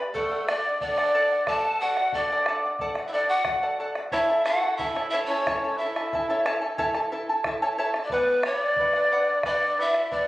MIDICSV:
0, 0, Header, 1, 5, 480
1, 0, Start_track
1, 0, Tempo, 664452
1, 103, Time_signature, 3, 2, 24, 8
1, 7423, End_track
2, 0, Start_track
2, 0, Title_t, "Charango"
2, 0, Program_c, 0, 24
2, 0, Note_on_c, 0, 71, 45
2, 0, Note_on_c, 0, 74, 48
2, 0, Note_on_c, 0, 83, 53
2, 98, Note_off_c, 0, 71, 0
2, 98, Note_off_c, 0, 74, 0
2, 101, Note_on_c, 0, 69, 77
2, 104, Note_off_c, 0, 83, 0
2, 106, Note_on_c, 0, 74, 83
2, 110, Note_on_c, 0, 78, 87
2, 217, Note_off_c, 0, 78, 0
2, 222, Note_off_c, 0, 69, 0
2, 225, Note_off_c, 0, 74, 0
2, 226, Note_on_c, 0, 78, 55
2, 234, Note_on_c, 0, 74, 44
2, 343, Note_off_c, 0, 74, 0
2, 345, Note_off_c, 0, 78, 0
2, 349, Note_on_c, 0, 69, 57
2, 352, Note_on_c, 0, 74, 63
2, 359, Note_on_c, 0, 78, 64
2, 466, Note_off_c, 0, 69, 0
2, 466, Note_off_c, 0, 78, 0
2, 468, Note_off_c, 0, 74, 0
2, 475, Note_on_c, 0, 78, 48
2, 484, Note_on_c, 0, 74, 46
2, 585, Note_off_c, 0, 74, 0
2, 589, Note_off_c, 0, 78, 0
2, 590, Note_on_c, 0, 69, 59
2, 594, Note_on_c, 0, 74, 61
2, 600, Note_on_c, 0, 78, 59
2, 696, Note_off_c, 0, 78, 0
2, 702, Note_off_c, 0, 74, 0
2, 704, Note_off_c, 0, 69, 0
2, 704, Note_on_c, 0, 78, 67
2, 711, Note_on_c, 0, 74, 64
2, 712, Note_on_c, 0, 69, 51
2, 819, Note_off_c, 0, 69, 0
2, 821, Note_off_c, 0, 74, 0
2, 824, Note_off_c, 0, 78, 0
2, 828, Note_on_c, 0, 69, 84
2, 830, Note_on_c, 0, 74, 87
2, 833, Note_on_c, 0, 78, 88
2, 944, Note_off_c, 0, 78, 0
2, 946, Note_off_c, 0, 69, 0
2, 947, Note_off_c, 0, 74, 0
2, 953, Note_on_c, 0, 78, 54
2, 962, Note_on_c, 0, 74, 41
2, 1061, Note_off_c, 0, 74, 0
2, 1066, Note_off_c, 0, 78, 0
2, 1067, Note_on_c, 0, 69, 74
2, 1070, Note_on_c, 0, 74, 82
2, 1075, Note_on_c, 0, 78, 91
2, 1178, Note_off_c, 0, 78, 0
2, 1186, Note_off_c, 0, 69, 0
2, 1187, Note_off_c, 0, 74, 0
2, 1187, Note_on_c, 0, 78, 58
2, 1199, Note_on_c, 0, 74, 40
2, 1306, Note_off_c, 0, 78, 0
2, 1309, Note_off_c, 0, 74, 0
2, 1314, Note_on_c, 0, 69, 57
2, 1318, Note_on_c, 0, 74, 56
2, 1321, Note_on_c, 0, 78, 59
2, 1424, Note_off_c, 0, 78, 0
2, 1429, Note_off_c, 0, 69, 0
2, 1431, Note_off_c, 0, 74, 0
2, 1433, Note_on_c, 0, 78, 54
2, 1443, Note_on_c, 0, 74, 42
2, 1547, Note_off_c, 0, 74, 0
2, 1549, Note_off_c, 0, 78, 0
2, 1553, Note_on_c, 0, 69, 57
2, 1556, Note_on_c, 0, 74, 61
2, 1563, Note_on_c, 0, 78, 61
2, 1666, Note_off_c, 0, 78, 0
2, 1669, Note_off_c, 0, 69, 0
2, 1670, Note_off_c, 0, 74, 0
2, 1674, Note_on_c, 0, 78, 65
2, 1679, Note_on_c, 0, 74, 61
2, 1680, Note_on_c, 0, 69, 50
2, 1783, Note_off_c, 0, 69, 0
2, 1788, Note_off_c, 0, 74, 0
2, 1790, Note_off_c, 0, 78, 0
2, 1791, Note_on_c, 0, 69, 73
2, 1796, Note_on_c, 0, 74, 72
2, 1800, Note_on_c, 0, 78, 73
2, 1907, Note_off_c, 0, 78, 0
2, 1908, Note_off_c, 0, 69, 0
2, 1910, Note_off_c, 0, 74, 0
2, 1916, Note_on_c, 0, 78, 45
2, 1924, Note_on_c, 0, 74, 37
2, 2024, Note_off_c, 0, 74, 0
2, 2026, Note_off_c, 0, 78, 0
2, 2030, Note_on_c, 0, 69, 74
2, 2033, Note_on_c, 0, 74, 71
2, 2035, Note_on_c, 0, 78, 80
2, 2146, Note_off_c, 0, 78, 0
2, 2147, Note_off_c, 0, 69, 0
2, 2149, Note_off_c, 0, 74, 0
2, 2155, Note_on_c, 0, 78, 51
2, 2163, Note_on_c, 0, 74, 39
2, 2259, Note_off_c, 0, 74, 0
2, 2263, Note_on_c, 0, 69, 52
2, 2264, Note_off_c, 0, 78, 0
2, 2268, Note_on_c, 0, 74, 57
2, 2273, Note_on_c, 0, 78, 64
2, 2376, Note_off_c, 0, 78, 0
2, 2384, Note_off_c, 0, 69, 0
2, 2385, Note_on_c, 0, 78, 49
2, 2386, Note_off_c, 0, 74, 0
2, 2398, Note_on_c, 0, 74, 36
2, 2497, Note_off_c, 0, 74, 0
2, 2500, Note_on_c, 0, 69, 51
2, 2503, Note_off_c, 0, 78, 0
2, 2506, Note_on_c, 0, 74, 61
2, 2511, Note_on_c, 0, 78, 63
2, 2612, Note_off_c, 0, 78, 0
2, 2613, Note_off_c, 0, 74, 0
2, 2614, Note_off_c, 0, 69, 0
2, 2621, Note_on_c, 0, 78, 60
2, 2622, Note_on_c, 0, 74, 59
2, 2623, Note_on_c, 0, 69, 60
2, 2734, Note_off_c, 0, 69, 0
2, 2739, Note_off_c, 0, 74, 0
2, 2739, Note_off_c, 0, 78, 0
2, 2743, Note_on_c, 0, 69, 66
2, 2747, Note_on_c, 0, 74, 71
2, 2748, Note_on_c, 0, 78, 73
2, 2852, Note_off_c, 0, 78, 0
2, 2861, Note_on_c, 0, 78, 44
2, 2863, Note_off_c, 0, 74, 0
2, 2864, Note_off_c, 0, 69, 0
2, 2872, Note_on_c, 0, 74, 42
2, 2975, Note_off_c, 0, 74, 0
2, 2978, Note_on_c, 0, 73, 72
2, 2980, Note_off_c, 0, 78, 0
2, 2981, Note_on_c, 0, 69, 75
2, 2983, Note_on_c, 0, 76, 78
2, 2985, Note_on_c, 0, 64, 77
2, 2985, Note_on_c, 0, 81, 81
2, 3094, Note_off_c, 0, 81, 0
2, 3102, Note_off_c, 0, 73, 0
2, 3103, Note_off_c, 0, 69, 0
2, 3103, Note_on_c, 0, 81, 52
2, 3104, Note_off_c, 0, 76, 0
2, 3105, Note_off_c, 0, 64, 0
2, 3113, Note_on_c, 0, 69, 46
2, 3117, Note_on_c, 0, 64, 39
2, 3214, Note_off_c, 0, 64, 0
2, 3218, Note_on_c, 0, 76, 52
2, 3219, Note_off_c, 0, 69, 0
2, 3220, Note_off_c, 0, 81, 0
2, 3222, Note_on_c, 0, 64, 58
2, 3227, Note_on_c, 0, 69, 63
2, 3228, Note_on_c, 0, 81, 61
2, 3335, Note_off_c, 0, 81, 0
2, 3342, Note_off_c, 0, 76, 0
2, 3343, Note_off_c, 0, 69, 0
2, 3344, Note_off_c, 0, 64, 0
2, 3344, Note_on_c, 0, 81, 48
2, 3352, Note_on_c, 0, 69, 45
2, 3353, Note_on_c, 0, 64, 44
2, 3458, Note_off_c, 0, 64, 0
2, 3461, Note_off_c, 0, 69, 0
2, 3463, Note_off_c, 0, 81, 0
2, 3463, Note_on_c, 0, 76, 52
2, 3467, Note_on_c, 0, 64, 55
2, 3469, Note_on_c, 0, 69, 58
2, 3471, Note_on_c, 0, 81, 64
2, 3568, Note_off_c, 0, 69, 0
2, 3570, Note_off_c, 0, 81, 0
2, 3574, Note_off_c, 0, 64, 0
2, 3577, Note_off_c, 0, 76, 0
2, 3577, Note_on_c, 0, 69, 62
2, 3579, Note_on_c, 0, 81, 56
2, 3583, Note_on_c, 0, 64, 57
2, 3585, Note_on_c, 0, 73, 52
2, 3585, Note_on_c, 0, 76, 58
2, 3699, Note_off_c, 0, 73, 0
2, 3699, Note_off_c, 0, 76, 0
2, 3701, Note_off_c, 0, 69, 0
2, 3702, Note_off_c, 0, 81, 0
2, 3704, Note_off_c, 0, 64, 0
2, 3708, Note_on_c, 0, 73, 77
2, 3708, Note_on_c, 0, 76, 74
2, 3714, Note_on_c, 0, 64, 79
2, 3714, Note_on_c, 0, 81, 73
2, 3717, Note_on_c, 0, 69, 77
2, 3819, Note_off_c, 0, 81, 0
2, 3826, Note_off_c, 0, 69, 0
2, 3826, Note_off_c, 0, 73, 0
2, 3826, Note_off_c, 0, 76, 0
2, 3828, Note_on_c, 0, 81, 54
2, 3829, Note_off_c, 0, 64, 0
2, 3834, Note_on_c, 0, 69, 41
2, 3841, Note_on_c, 0, 64, 36
2, 3946, Note_off_c, 0, 81, 0
2, 3947, Note_off_c, 0, 64, 0
2, 3950, Note_off_c, 0, 69, 0
2, 3955, Note_on_c, 0, 73, 72
2, 3956, Note_on_c, 0, 64, 76
2, 3958, Note_on_c, 0, 69, 79
2, 3959, Note_on_c, 0, 76, 79
2, 3960, Note_on_c, 0, 81, 86
2, 4066, Note_off_c, 0, 81, 0
2, 4070, Note_off_c, 0, 64, 0
2, 4070, Note_off_c, 0, 73, 0
2, 4072, Note_off_c, 0, 69, 0
2, 4072, Note_off_c, 0, 76, 0
2, 4075, Note_on_c, 0, 81, 51
2, 4080, Note_on_c, 0, 69, 48
2, 4085, Note_on_c, 0, 64, 39
2, 4185, Note_off_c, 0, 64, 0
2, 4188, Note_on_c, 0, 76, 58
2, 4189, Note_off_c, 0, 69, 0
2, 4190, Note_off_c, 0, 81, 0
2, 4194, Note_on_c, 0, 64, 55
2, 4197, Note_on_c, 0, 69, 61
2, 4199, Note_on_c, 0, 81, 62
2, 4300, Note_off_c, 0, 81, 0
2, 4306, Note_off_c, 0, 76, 0
2, 4308, Note_off_c, 0, 69, 0
2, 4309, Note_off_c, 0, 64, 0
2, 4309, Note_on_c, 0, 81, 50
2, 4317, Note_on_c, 0, 69, 44
2, 4320, Note_on_c, 0, 64, 38
2, 4426, Note_off_c, 0, 64, 0
2, 4427, Note_off_c, 0, 81, 0
2, 4428, Note_on_c, 0, 76, 59
2, 4429, Note_off_c, 0, 69, 0
2, 4434, Note_on_c, 0, 64, 61
2, 4438, Note_on_c, 0, 69, 63
2, 4442, Note_on_c, 0, 81, 66
2, 4541, Note_off_c, 0, 81, 0
2, 4542, Note_off_c, 0, 69, 0
2, 4545, Note_off_c, 0, 76, 0
2, 4546, Note_off_c, 0, 64, 0
2, 4549, Note_on_c, 0, 81, 63
2, 4551, Note_on_c, 0, 69, 64
2, 4554, Note_on_c, 0, 76, 55
2, 4555, Note_on_c, 0, 64, 59
2, 4559, Note_on_c, 0, 73, 56
2, 4655, Note_off_c, 0, 73, 0
2, 4659, Note_off_c, 0, 76, 0
2, 4662, Note_off_c, 0, 64, 0
2, 4664, Note_on_c, 0, 73, 79
2, 4665, Note_off_c, 0, 69, 0
2, 4667, Note_off_c, 0, 81, 0
2, 4668, Note_on_c, 0, 76, 74
2, 4671, Note_on_c, 0, 64, 81
2, 4673, Note_on_c, 0, 69, 76
2, 4674, Note_on_c, 0, 81, 83
2, 4770, Note_off_c, 0, 81, 0
2, 4776, Note_off_c, 0, 69, 0
2, 4778, Note_on_c, 0, 81, 59
2, 4783, Note_off_c, 0, 64, 0
2, 4784, Note_off_c, 0, 73, 0
2, 4785, Note_on_c, 0, 69, 51
2, 4786, Note_off_c, 0, 76, 0
2, 4792, Note_on_c, 0, 64, 47
2, 4895, Note_off_c, 0, 64, 0
2, 4895, Note_off_c, 0, 69, 0
2, 4896, Note_off_c, 0, 81, 0
2, 4900, Note_on_c, 0, 73, 84
2, 4904, Note_on_c, 0, 64, 90
2, 4904, Note_on_c, 0, 69, 86
2, 4904, Note_on_c, 0, 76, 75
2, 4905, Note_on_c, 0, 81, 92
2, 5010, Note_off_c, 0, 81, 0
2, 5015, Note_off_c, 0, 69, 0
2, 5019, Note_off_c, 0, 64, 0
2, 5019, Note_on_c, 0, 81, 56
2, 5022, Note_off_c, 0, 73, 0
2, 5024, Note_off_c, 0, 76, 0
2, 5024, Note_on_c, 0, 69, 58
2, 5028, Note_on_c, 0, 64, 46
2, 5137, Note_off_c, 0, 64, 0
2, 5139, Note_off_c, 0, 69, 0
2, 5141, Note_off_c, 0, 81, 0
2, 5143, Note_on_c, 0, 76, 62
2, 5145, Note_on_c, 0, 64, 69
2, 5148, Note_on_c, 0, 69, 70
2, 5150, Note_on_c, 0, 81, 70
2, 5260, Note_off_c, 0, 81, 0
2, 5263, Note_off_c, 0, 76, 0
2, 5265, Note_off_c, 0, 64, 0
2, 5266, Note_off_c, 0, 69, 0
2, 5269, Note_on_c, 0, 81, 56
2, 5274, Note_on_c, 0, 69, 52
2, 5278, Note_on_c, 0, 64, 45
2, 5384, Note_off_c, 0, 64, 0
2, 5386, Note_off_c, 0, 81, 0
2, 5387, Note_off_c, 0, 69, 0
2, 5387, Note_on_c, 0, 76, 66
2, 5393, Note_on_c, 0, 64, 69
2, 5395, Note_on_c, 0, 69, 71
2, 5399, Note_on_c, 0, 81, 76
2, 5497, Note_off_c, 0, 81, 0
2, 5498, Note_off_c, 0, 64, 0
2, 5498, Note_off_c, 0, 69, 0
2, 5499, Note_off_c, 0, 76, 0
2, 5506, Note_on_c, 0, 69, 69
2, 5506, Note_on_c, 0, 81, 76
2, 5507, Note_on_c, 0, 64, 71
2, 5507, Note_on_c, 0, 76, 63
2, 5509, Note_on_c, 0, 73, 61
2, 5614, Note_off_c, 0, 73, 0
2, 5616, Note_off_c, 0, 64, 0
2, 5617, Note_off_c, 0, 76, 0
2, 5623, Note_off_c, 0, 69, 0
2, 5623, Note_off_c, 0, 81, 0
2, 5623, Note_on_c, 0, 73, 85
2, 5624, Note_on_c, 0, 64, 82
2, 5626, Note_on_c, 0, 76, 93
2, 5632, Note_on_c, 0, 69, 88
2, 5632, Note_on_c, 0, 81, 90
2, 5738, Note_off_c, 0, 81, 0
2, 5743, Note_off_c, 0, 69, 0
2, 5743, Note_off_c, 0, 73, 0
2, 5744, Note_off_c, 0, 64, 0
2, 5744, Note_off_c, 0, 76, 0
2, 5747, Note_on_c, 0, 81, 51
2, 5751, Note_on_c, 0, 69, 44
2, 5756, Note_on_c, 0, 64, 44
2, 5861, Note_off_c, 0, 64, 0
2, 5864, Note_on_c, 0, 71, 83
2, 5865, Note_off_c, 0, 81, 0
2, 5866, Note_on_c, 0, 74, 79
2, 5867, Note_off_c, 0, 69, 0
2, 5872, Note_on_c, 0, 78, 84
2, 5973, Note_off_c, 0, 78, 0
2, 5982, Note_on_c, 0, 78, 47
2, 5984, Note_off_c, 0, 71, 0
2, 5985, Note_off_c, 0, 74, 0
2, 5993, Note_on_c, 0, 74, 42
2, 6102, Note_off_c, 0, 78, 0
2, 6108, Note_off_c, 0, 74, 0
2, 6111, Note_on_c, 0, 71, 54
2, 6118, Note_on_c, 0, 74, 58
2, 6124, Note_on_c, 0, 78, 57
2, 6218, Note_off_c, 0, 78, 0
2, 6227, Note_off_c, 0, 71, 0
2, 6227, Note_on_c, 0, 78, 51
2, 6230, Note_off_c, 0, 74, 0
2, 6239, Note_on_c, 0, 74, 47
2, 6345, Note_off_c, 0, 78, 0
2, 6351, Note_off_c, 0, 74, 0
2, 6352, Note_on_c, 0, 71, 57
2, 6359, Note_on_c, 0, 74, 63
2, 6363, Note_on_c, 0, 78, 64
2, 6463, Note_off_c, 0, 78, 0
2, 6466, Note_off_c, 0, 74, 0
2, 6467, Note_off_c, 0, 71, 0
2, 6471, Note_on_c, 0, 78, 65
2, 6475, Note_on_c, 0, 74, 56
2, 6480, Note_on_c, 0, 71, 51
2, 6576, Note_off_c, 0, 71, 0
2, 6583, Note_off_c, 0, 74, 0
2, 6585, Note_off_c, 0, 78, 0
2, 6585, Note_on_c, 0, 71, 67
2, 6591, Note_on_c, 0, 74, 77
2, 6593, Note_on_c, 0, 78, 85
2, 6696, Note_off_c, 0, 78, 0
2, 6703, Note_off_c, 0, 71, 0
2, 6705, Note_on_c, 0, 78, 47
2, 6706, Note_off_c, 0, 74, 0
2, 6714, Note_on_c, 0, 74, 39
2, 6823, Note_off_c, 0, 78, 0
2, 6825, Note_off_c, 0, 74, 0
2, 6832, Note_on_c, 0, 71, 75
2, 6833, Note_on_c, 0, 74, 89
2, 6838, Note_on_c, 0, 78, 88
2, 6934, Note_off_c, 0, 78, 0
2, 6943, Note_on_c, 0, 78, 55
2, 6945, Note_off_c, 0, 74, 0
2, 6946, Note_off_c, 0, 71, 0
2, 6953, Note_on_c, 0, 74, 48
2, 7062, Note_off_c, 0, 78, 0
2, 7067, Note_off_c, 0, 74, 0
2, 7068, Note_on_c, 0, 71, 52
2, 7075, Note_on_c, 0, 74, 55
2, 7079, Note_on_c, 0, 78, 60
2, 7181, Note_off_c, 0, 78, 0
2, 7184, Note_off_c, 0, 71, 0
2, 7187, Note_off_c, 0, 74, 0
2, 7190, Note_on_c, 0, 78, 46
2, 7195, Note_on_c, 0, 74, 46
2, 7304, Note_off_c, 0, 74, 0
2, 7305, Note_off_c, 0, 78, 0
2, 7305, Note_on_c, 0, 71, 63
2, 7313, Note_on_c, 0, 74, 62
2, 7318, Note_on_c, 0, 78, 69
2, 7420, Note_off_c, 0, 78, 0
2, 7422, Note_off_c, 0, 71, 0
2, 7423, Note_off_c, 0, 74, 0
2, 7423, End_track
3, 0, Start_track
3, 0, Title_t, "Pan flute"
3, 0, Program_c, 1, 75
3, 102, Note_on_c, 1, 69, 76
3, 346, Note_on_c, 1, 74, 86
3, 356, Note_off_c, 1, 69, 0
3, 581, Note_off_c, 1, 74, 0
3, 585, Note_on_c, 1, 74, 97
3, 1036, Note_off_c, 1, 74, 0
3, 1071, Note_on_c, 1, 81, 102
3, 1305, Note_on_c, 1, 78, 92
3, 1316, Note_off_c, 1, 81, 0
3, 1543, Note_off_c, 1, 78, 0
3, 1547, Note_on_c, 1, 74, 84
3, 1997, Note_off_c, 1, 74, 0
3, 2225, Note_on_c, 1, 76, 57
3, 2260, Note_on_c, 1, 74, 76
3, 2271, Note_off_c, 1, 76, 0
3, 2370, Note_off_c, 1, 74, 0
3, 2374, Note_on_c, 1, 78, 94
3, 2714, Note_off_c, 1, 78, 0
3, 2981, Note_on_c, 1, 76, 92
3, 3214, Note_on_c, 1, 78, 95
3, 3225, Note_off_c, 1, 76, 0
3, 3447, Note_on_c, 1, 76, 93
3, 3458, Note_off_c, 1, 78, 0
3, 3681, Note_off_c, 1, 76, 0
3, 3685, Note_on_c, 1, 76, 90
3, 3729, Note_off_c, 1, 76, 0
3, 3803, Note_on_c, 1, 73, 85
3, 4175, Note_on_c, 1, 76, 82
3, 4186, Note_off_c, 1, 73, 0
3, 4660, Note_off_c, 1, 76, 0
3, 5811, Note_on_c, 1, 74, 55
3, 5865, Note_on_c, 1, 71, 79
3, 5876, Note_off_c, 1, 74, 0
3, 6107, Note_on_c, 1, 73, 99
3, 6118, Note_off_c, 1, 71, 0
3, 6222, Note_off_c, 1, 73, 0
3, 6222, Note_on_c, 1, 74, 99
3, 6823, Note_off_c, 1, 74, 0
3, 6834, Note_on_c, 1, 74, 99
3, 7083, Note_on_c, 1, 76, 89
3, 7094, Note_off_c, 1, 74, 0
3, 7309, Note_off_c, 1, 76, 0
3, 7313, Note_on_c, 1, 74, 100
3, 7423, Note_off_c, 1, 74, 0
3, 7423, End_track
4, 0, Start_track
4, 0, Title_t, "Cor anglais"
4, 0, Program_c, 2, 69
4, 102, Note_on_c, 2, 57, 72
4, 351, Note_on_c, 2, 62, 72
4, 362, Note_off_c, 2, 57, 0
4, 585, Note_off_c, 2, 62, 0
4, 589, Note_on_c, 2, 62, 81
4, 1038, Note_off_c, 2, 62, 0
4, 1067, Note_on_c, 2, 69, 82
4, 1313, Note_on_c, 2, 66, 82
4, 1324, Note_off_c, 2, 69, 0
4, 1549, Note_off_c, 2, 66, 0
4, 1553, Note_on_c, 2, 62, 74
4, 2000, Note_off_c, 2, 62, 0
4, 2230, Note_on_c, 2, 64, 47
4, 2259, Note_on_c, 2, 62, 67
4, 2270, Note_off_c, 2, 64, 0
4, 2377, Note_off_c, 2, 62, 0
4, 2381, Note_on_c, 2, 66, 77
4, 2718, Note_off_c, 2, 66, 0
4, 2984, Note_on_c, 2, 64, 82
4, 3215, Note_on_c, 2, 66, 73
4, 3226, Note_off_c, 2, 64, 0
4, 3449, Note_on_c, 2, 64, 75
4, 3460, Note_off_c, 2, 66, 0
4, 3680, Note_off_c, 2, 64, 0
4, 3685, Note_on_c, 2, 64, 72
4, 3743, Note_off_c, 2, 64, 0
4, 3807, Note_on_c, 2, 61, 66
4, 4171, Note_on_c, 2, 64, 73
4, 4182, Note_off_c, 2, 61, 0
4, 4658, Note_off_c, 2, 64, 0
4, 5819, Note_on_c, 2, 62, 53
4, 5874, Note_on_c, 2, 59, 71
4, 5884, Note_off_c, 2, 62, 0
4, 6115, Note_on_c, 2, 62, 79
4, 6126, Note_off_c, 2, 59, 0
4, 6825, Note_off_c, 2, 62, 0
4, 6829, Note_on_c, 2, 62, 75
4, 7076, Note_on_c, 2, 64, 80
4, 7087, Note_off_c, 2, 62, 0
4, 7308, Note_off_c, 2, 64, 0
4, 7314, Note_on_c, 2, 62, 80
4, 7423, Note_off_c, 2, 62, 0
4, 7423, End_track
5, 0, Start_track
5, 0, Title_t, "Bombo"
5, 107, Note_on_c, 9, 43, 71
5, 179, Note_off_c, 9, 43, 0
5, 351, Note_on_c, 9, 37, 77
5, 423, Note_off_c, 9, 37, 0
5, 585, Note_on_c, 9, 37, 25
5, 585, Note_on_c, 9, 43, 74
5, 657, Note_off_c, 9, 37, 0
5, 657, Note_off_c, 9, 43, 0
5, 705, Note_on_c, 9, 37, 52
5, 778, Note_off_c, 9, 37, 0
5, 1062, Note_on_c, 9, 37, 69
5, 1062, Note_on_c, 9, 43, 72
5, 1134, Note_off_c, 9, 37, 0
5, 1134, Note_off_c, 9, 43, 0
5, 1422, Note_on_c, 9, 37, 57
5, 1494, Note_off_c, 9, 37, 0
5, 1535, Note_on_c, 9, 37, 21
5, 1535, Note_on_c, 9, 43, 71
5, 1608, Note_off_c, 9, 37, 0
5, 1608, Note_off_c, 9, 43, 0
5, 1657, Note_on_c, 9, 37, 20
5, 1730, Note_off_c, 9, 37, 0
5, 1777, Note_on_c, 9, 37, 73
5, 1849, Note_off_c, 9, 37, 0
5, 1903, Note_on_c, 9, 37, 23
5, 1975, Note_off_c, 9, 37, 0
5, 2016, Note_on_c, 9, 37, 25
5, 2016, Note_on_c, 9, 43, 74
5, 2088, Note_off_c, 9, 37, 0
5, 2088, Note_off_c, 9, 43, 0
5, 2134, Note_on_c, 9, 37, 56
5, 2206, Note_off_c, 9, 37, 0
5, 2490, Note_on_c, 9, 37, 69
5, 2490, Note_on_c, 9, 43, 73
5, 2562, Note_off_c, 9, 37, 0
5, 2562, Note_off_c, 9, 43, 0
5, 2732, Note_on_c, 9, 37, 20
5, 2804, Note_off_c, 9, 37, 0
5, 2857, Note_on_c, 9, 37, 59
5, 2929, Note_off_c, 9, 37, 0
5, 2974, Note_on_c, 9, 43, 67
5, 3046, Note_off_c, 9, 43, 0
5, 3219, Note_on_c, 9, 37, 71
5, 3291, Note_off_c, 9, 37, 0
5, 3461, Note_on_c, 9, 37, 23
5, 3461, Note_on_c, 9, 43, 76
5, 3534, Note_off_c, 9, 37, 0
5, 3534, Note_off_c, 9, 43, 0
5, 3586, Note_on_c, 9, 37, 54
5, 3659, Note_off_c, 9, 37, 0
5, 3951, Note_on_c, 9, 37, 68
5, 3951, Note_on_c, 9, 43, 71
5, 4023, Note_off_c, 9, 37, 0
5, 4023, Note_off_c, 9, 43, 0
5, 4307, Note_on_c, 9, 37, 57
5, 4380, Note_off_c, 9, 37, 0
5, 4427, Note_on_c, 9, 43, 68
5, 4499, Note_off_c, 9, 43, 0
5, 4666, Note_on_c, 9, 37, 75
5, 4738, Note_off_c, 9, 37, 0
5, 4900, Note_on_c, 9, 37, 24
5, 4900, Note_on_c, 9, 43, 77
5, 4972, Note_off_c, 9, 37, 0
5, 4972, Note_off_c, 9, 43, 0
5, 5017, Note_on_c, 9, 37, 55
5, 5089, Note_off_c, 9, 37, 0
5, 5377, Note_on_c, 9, 37, 69
5, 5377, Note_on_c, 9, 43, 68
5, 5449, Note_off_c, 9, 37, 0
5, 5449, Note_off_c, 9, 43, 0
5, 5736, Note_on_c, 9, 37, 60
5, 5808, Note_off_c, 9, 37, 0
5, 5849, Note_on_c, 9, 43, 73
5, 5922, Note_off_c, 9, 43, 0
5, 6092, Note_on_c, 9, 37, 80
5, 6165, Note_off_c, 9, 37, 0
5, 6331, Note_on_c, 9, 37, 25
5, 6331, Note_on_c, 9, 43, 76
5, 6403, Note_off_c, 9, 37, 0
5, 6403, Note_off_c, 9, 43, 0
5, 6454, Note_on_c, 9, 37, 51
5, 6526, Note_off_c, 9, 37, 0
5, 6815, Note_on_c, 9, 37, 71
5, 6815, Note_on_c, 9, 43, 70
5, 6887, Note_off_c, 9, 37, 0
5, 6887, Note_off_c, 9, 43, 0
5, 7183, Note_on_c, 9, 37, 57
5, 7255, Note_off_c, 9, 37, 0
5, 7308, Note_on_c, 9, 37, 25
5, 7308, Note_on_c, 9, 43, 68
5, 7381, Note_off_c, 9, 37, 0
5, 7381, Note_off_c, 9, 43, 0
5, 7423, End_track
0, 0, End_of_file